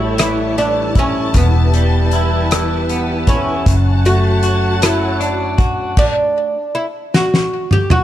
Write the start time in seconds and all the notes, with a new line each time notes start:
Already playing: A1 A2 G3 E4 F#4 A4 C#5 A5
0.18 E3 E4, cross-stick, closed hi-hat
0.58 D4, closed hi-hat
0.95 C#4 E4, kick, closed hi-hat
1.34 E1 E2 B3 E4 G4 B4, kick, closed hi-hat
1.74 G3, closed hi-hat
2.11 E4, closed hi-hat
2.51 E3, cross-stick, closed hi-hat
2.89 B3, closed hi-hat
3.27 C#4 E4, kick, closed hi-hat
3.66 F#1 F#2 F#4 C#5 F#5 A5, kick, closed hi-hat
4.05 A3 F#4, closed hi-hat
4.43 F#4, closed hi-hat
4.82 F#3 E4, cross-stick, closed hi-hat
5.20 D4, closed hi-hat
5.58 F#4, kick, closed hi-hat
5.97 D4, kick, crash
6.75 E4
7.14 F#4, snare
7.34 snare
7.71 G4, mid tom
7.90 F#4, mid tom